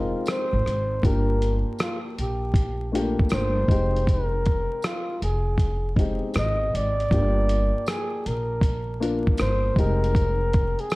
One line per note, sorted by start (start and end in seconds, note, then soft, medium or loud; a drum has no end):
0.00 0.10 F1 medium
0.00 0.64 G#3 medium
0.00 0.65 C4 medium
0.00 0.65 D#4 medium
0.00 0.29 F4 medium
0.00 0.66 A#4 medium
0.26 cross-stick loud
0.26 closed hi-hat medium
0.26 tambourine medium
0.31 1.07 C5 loud
0.53 0.65 G#1 loud
0.66 1.01 G#1 medium
0.66 cross-stick soft
0.66 closed hi-hat medium
1.02 1.62 G1 loud
1.02 2.07 A#3 medium
1.02 2.07 D4 medium
1.02 2.08 F4 medium
1.02 2.08 G4 medium
1.02 1.57 A#4 medium
1.02 kick loud
1.02 closed hi-hat medium
1.42 closed hi-hat medium
1.78 1.98 F4 medium
1.78 cross-stick loud
1.78 closed hi-hat medium
1.78 tambourine medium
2.18 3.14 A#1 medium
2.18 2.91 G4 medium
2.18 closed hi-hat medium
2.54 kick medium
2.54 closed hi-hat medium
2.92 3.01 A3 medium
2.92 3.68 D4 medium
2.92 3.69 F4 medium
2.92 3.69 G4 medium
2.92 closed hi-hat medium
2.98 3.71 A#3 medium
3.19 kick medium
3.29 3.67 G1 loud
3.29 cross-stick loud
3.29 closed hi-hat medium
3.29 tambourine medium
3.33 4.12 C5 loud
3.68 4.66 F1 medium
3.68 4.92 G#3 medium
3.68 4.93 C4 medium
3.68 4.93 D#4 medium
3.68 4.94 G4 medium
3.68 kick medium
3.68 closed hi-hat medium
3.96 closed hi-hat soft
4.07 4.88 A#4 loud
4.07 kick loud
4.07 closed hi-hat medium
4.46 kick medium
4.46 closed hi-hat medium
4.82 5.23 F4 medium
4.82 cross-stick loud
4.82 closed hi-hat medium
4.82 tambourine medium
5.22 6.18 F1 medium
5.22 5.94 G#4 medium
5.22 closed hi-hat medium
5.58 kick medium
5.58 closed hi-hat medium
5.96 6.72 G#3 medium
5.96 6.72 C4 medium
5.96 6.73 D#4 medium
5.96 6.73 G4 medium
5.96 kick loud
5.96 closed hi-hat medium
6.34 6.71 G#1 medium
6.34 cross-stick loud
6.34 closed hi-hat medium
6.34 tambourine medium
6.38 6.78 D#5 loud
6.74 7.09 G#1 medium
6.74 7.88 D5 loud
6.74 closed hi-hat medium
7.00 closed hi-hat soft
7.10 7.70 G1 loud
7.10 8.14 A#3 medium
7.10 8.15 D4 medium
7.10 8.16 F4 medium
7.10 8.16 G4 medium
7.10 kick loud
7.10 closed hi-hat medium
7.49 closed hi-hat medium
7.86 8.29 G#4 medium
7.86 cross-stick loud
7.86 closed hi-hat medium
7.86 tambourine medium
8.26 9.22 A#1 medium
8.26 9.02 A#4 medium
8.26 closed hi-hat medium
8.61 kick medium
8.61 closed hi-hat medium
9.00 9.76 A#3 medium
9.00 9.76 D4 medium
9.00 9.77 F4 medium
9.00 9.77 A#4 medium
9.00 closed hi-hat medium
9.27 kick loud
9.37 9.75 G1 loud
9.37 9.81 C5 loud
9.37 cross-stick loud
9.37 closed hi-hat medium
9.37 tambourine medium
9.76 10.73 F1 medium
9.76 9.85 G3 medium
9.76 10.96 C4 medium
9.76 10.96 D#4 medium
9.76 10.96 G4 medium
9.76 10.82 A#4 loud
9.76 kick medium
9.76 closed hi-hat medium
9.83 10.96 G#3 medium
10.04 closed hi-hat soft
10.15 kick loud
10.15 closed hi-hat medium
10.53 kick medium
10.53 closed hi-hat medium
10.79 10.96 G#4 medium
10.79 closed hi-hat soft
10.90 cross-stick loud
10.90 closed hi-hat medium
10.90 tambourine medium